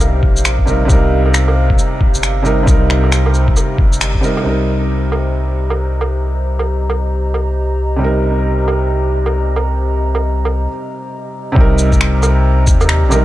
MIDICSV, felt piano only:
0, 0, Header, 1, 2, 480
1, 0, Start_track
1, 0, Key_signature, -3, "minor"
1, 0, Tempo, 444444
1, 970, Time_signature, 4, 2, 24, 8
1, 14309, End_track
2, 0, Start_track
2, 0, Title_t, "Felt piano"
2, 0, Program_c, 0, 0
2, 0, Control_c, 0, 64, 127
2, 0, Note_on_c, 0, 48, 87
2, 0, Note_on_c, 0, 55, 83
2, 0, Note_on_c, 0, 63, 84
2, 0, Note_on_c, 0, 70, 99
2, 687, Note_off_c, 0, 48, 0
2, 701, Note_off_c, 0, 55, 0
2, 707, Note_on_c, 0, 48, 83
2, 716, Note_off_c, 0, 63, 0
2, 719, Note_on_c, 0, 55, 71
2, 729, Note_off_c, 0, 70, 0
2, 732, Note_on_c, 0, 63, 70
2, 748, Note_on_c, 0, 70, 85
2, 903, Note_off_c, 0, 48, 0
2, 919, Note_on_c, 0, 48, 95
2, 932, Note_off_c, 0, 55, 0
2, 949, Note_off_c, 0, 63, 0
2, 949, Note_on_c, 0, 55, 84
2, 957, Note_off_c, 0, 70, 0
2, 978, Note_on_c, 0, 63, 79
2, 1004, Note_on_c, 0, 70, 100
2, 2602, Note_off_c, 0, 48, 0
2, 2615, Note_off_c, 0, 55, 0
2, 2621, Note_on_c, 0, 48, 81
2, 2631, Note_on_c, 0, 55, 71
2, 2632, Note_off_c, 0, 63, 0
2, 2645, Note_off_c, 0, 70, 0
2, 2650, Note_on_c, 0, 63, 76
2, 2662, Note_on_c, 0, 70, 90
2, 2825, Note_off_c, 0, 48, 0
2, 2841, Note_on_c, 0, 48, 93
2, 2855, Note_off_c, 0, 55, 0
2, 2868, Note_off_c, 0, 63, 0
2, 2871, Note_on_c, 0, 55, 82
2, 2874, Note_off_c, 0, 70, 0
2, 2899, Note_on_c, 0, 63, 86
2, 2927, Note_on_c, 0, 70, 101
2, 4524, Note_off_c, 0, 48, 0
2, 4538, Note_off_c, 0, 55, 0
2, 4543, Note_on_c, 0, 48, 82
2, 4552, Note_off_c, 0, 63, 0
2, 4559, Note_on_c, 0, 55, 72
2, 4566, Note_off_c, 0, 70, 0
2, 4575, Note_on_c, 0, 63, 72
2, 4586, Note_on_c, 0, 70, 85
2, 4743, Note_off_c, 0, 48, 0
2, 4759, Note_on_c, 0, 48, 70
2, 4773, Note_off_c, 0, 55, 0
2, 4789, Note_on_c, 0, 55, 61
2, 4790, Note_off_c, 0, 63, 0
2, 4796, Note_off_c, 0, 70, 0
2, 4817, Note_on_c, 0, 63, 64
2, 4822, Control_c, 0, 64, 0
2, 4847, Note_on_c, 0, 70, 76
2, 5001, Control_c, 0, 64, 127
2, 8583, Note_off_c, 0, 48, 0
2, 8600, Note_on_c, 0, 48, 73
2, 8608, Note_off_c, 0, 55, 0
2, 8625, Note_on_c, 0, 55, 67
2, 8631, Note_off_c, 0, 63, 0
2, 8646, Note_off_c, 0, 70, 0
2, 8656, Note_on_c, 0, 63, 66
2, 8685, Note_on_c, 0, 70, 77
2, 11504, Note_off_c, 0, 48, 0
2, 11517, Note_off_c, 0, 55, 0
2, 11532, Note_off_c, 0, 63, 0
2, 11547, Note_off_c, 0, 70, 0
2, 12442, Note_on_c, 0, 48, 92
2, 12473, Note_on_c, 0, 55, 84
2, 12502, Control_c, 0, 64, 0
2, 12503, Note_on_c, 0, 63, 82
2, 12532, Note_on_c, 0, 70, 104
2, 12709, Control_c, 0, 64, 127
2, 14122, Note_off_c, 0, 48, 0
2, 14133, Note_off_c, 0, 55, 0
2, 14138, Note_on_c, 0, 48, 80
2, 14149, Note_on_c, 0, 55, 70
2, 14150, Note_off_c, 0, 63, 0
2, 14166, Note_off_c, 0, 70, 0
2, 14166, Note_on_c, 0, 63, 78
2, 14182, Note_on_c, 0, 70, 91
2, 14309, Note_off_c, 0, 48, 0
2, 14309, Note_off_c, 0, 55, 0
2, 14309, Note_off_c, 0, 63, 0
2, 14309, Note_off_c, 0, 70, 0
2, 14309, End_track
0, 0, End_of_file